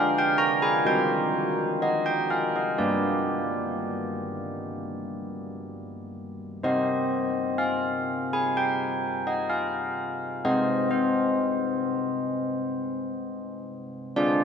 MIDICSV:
0, 0, Header, 1, 2, 480
1, 0, Start_track
1, 0, Key_signature, -3, "minor"
1, 0, Tempo, 943396
1, 921, Tempo, 961538
1, 1402, Time_signature, 4, 2, 24, 8
1, 4281, Tempo, 936037
1, 7306, End_track
2, 0, Start_track
2, 0, Title_t, "Church bells"
2, 0, Program_c, 0, 14
2, 0, Note_on_c, 0, 62, 80
2, 0, Note_on_c, 0, 65, 68
2, 0, Note_on_c, 0, 68, 64
2, 0, Note_on_c, 0, 77, 113
2, 84, Note_off_c, 0, 77, 0
2, 94, Note_on_c, 0, 79, 110
2, 194, Note_on_c, 0, 82, 122
2, 206, Note_off_c, 0, 79, 0
2, 315, Note_off_c, 0, 82, 0
2, 317, Note_on_c, 0, 80, 114
2, 420, Note_off_c, 0, 62, 0
2, 420, Note_off_c, 0, 65, 0
2, 421, Note_off_c, 0, 68, 0
2, 435, Note_on_c, 0, 63, 76
2, 437, Note_off_c, 0, 80, 0
2, 438, Note_on_c, 0, 67, 62
2, 440, Note_on_c, 0, 79, 116
2, 441, Note_on_c, 0, 72, 58
2, 903, Note_off_c, 0, 79, 0
2, 927, Note_on_c, 0, 75, 106
2, 1043, Note_off_c, 0, 75, 0
2, 1045, Note_on_c, 0, 79, 99
2, 1162, Note_off_c, 0, 79, 0
2, 1168, Note_on_c, 0, 77, 87
2, 1284, Note_off_c, 0, 77, 0
2, 1294, Note_on_c, 0, 75, 76
2, 1380, Note_off_c, 0, 63, 0
2, 1382, Note_off_c, 0, 67, 0
2, 1384, Note_off_c, 0, 72, 0
2, 1407, Note_on_c, 0, 74, 92
2, 1408, Note_off_c, 0, 75, 0
2, 1408, Note_on_c, 0, 71, 52
2, 1410, Note_on_c, 0, 55, 55
2, 1410, Note_on_c, 0, 67, 54
2, 2833, Note_off_c, 0, 74, 0
2, 3312, Note_off_c, 0, 71, 0
2, 3313, Note_off_c, 0, 55, 0
2, 3313, Note_off_c, 0, 67, 0
2, 3329, Note_on_c, 0, 72, 54
2, 3330, Note_on_c, 0, 60, 63
2, 3333, Note_on_c, 0, 75, 103
2, 3337, Note_on_c, 0, 67, 57
2, 3789, Note_off_c, 0, 75, 0
2, 3802, Note_on_c, 0, 77, 94
2, 4145, Note_off_c, 0, 77, 0
2, 4177, Note_on_c, 0, 80, 103
2, 4288, Note_off_c, 0, 80, 0
2, 4296, Note_on_c, 0, 79, 105
2, 4638, Note_off_c, 0, 79, 0
2, 4654, Note_on_c, 0, 75, 88
2, 4769, Note_off_c, 0, 75, 0
2, 4771, Note_on_c, 0, 77, 93
2, 5225, Note_off_c, 0, 60, 0
2, 5225, Note_off_c, 0, 72, 0
2, 5228, Note_off_c, 0, 67, 0
2, 5229, Note_off_c, 0, 77, 0
2, 5258, Note_on_c, 0, 72, 58
2, 5259, Note_on_c, 0, 60, 66
2, 5259, Note_on_c, 0, 68, 55
2, 5259, Note_on_c, 0, 75, 109
2, 5484, Note_off_c, 0, 75, 0
2, 5488, Note_off_c, 0, 72, 0
2, 5494, Note_on_c, 0, 72, 91
2, 6910, Note_off_c, 0, 72, 0
2, 7149, Note_off_c, 0, 60, 0
2, 7149, Note_off_c, 0, 68, 0
2, 7164, Note_on_c, 0, 74, 124
2, 7165, Note_on_c, 0, 62, 75
2, 7167, Note_on_c, 0, 68, 60
2, 7169, Note_on_c, 0, 72, 64
2, 7306, Note_off_c, 0, 62, 0
2, 7306, Note_off_c, 0, 68, 0
2, 7306, Note_off_c, 0, 72, 0
2, 7306, Note_off_c, 0, 74, 0
2, 7306, End_track
0, 0, End_of_file